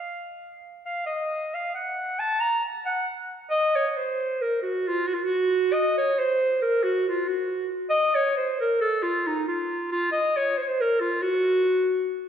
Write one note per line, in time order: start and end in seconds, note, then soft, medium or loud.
0.00 0.59 F5 medium
0.85 1.04 F5 medium
1.06 1.56 D#5 medium
1.54 1.74 F5 medium
1.75 2.21 F#5 medium
2.19 2.42 A5 loud
2.40 2.64 A#5 loud
2.86 3.07 F#5 loud
3.50 3.77 D#5 loud
3.76 3.89 C#5 loud
3.89 3.98 C#5 medium
3.97 4.43 C5 loud
4.41 4.61 A#4 medium
4.62 4.89 F#4 medium
4.88 5.09 F4 loud
5.08 5.16 F#4 loud
5.14 5.26 F4 medium
5.24 5.74 F#4 loud
5.73 5.97 D#5 loud
5.98 6.20 C#5 loud
6.18 6.61 C5 loud
6.62 6.84 A#4 loud
6.83 7.07 F#4 loud
7.09 7.30 F4 medium
7.28 7.67 F#4 medium
7.90 8.17 D#5 loud
8.15 8.36 C#5 loud
8.37 8.58 C5 loud
8.61 8.79 A#4 medium
8.81 9.04 A4 loud
9.03 9.28 F4 loud
9.27 9.47 D#4 medium
9.48 9.88 F4 medium
9.91 10.10 F4 loud
10.12 10.38 D#5 loud
10.37 10.59 C#5 loud
10.57 10.64 C5 medium
10.62 10.70 C#5 medium
10.68 10.82 C5 loud
10.81 11.02 A#4 loud
11.00 11.24 F4 medium
11.23 12.11 F#4 loud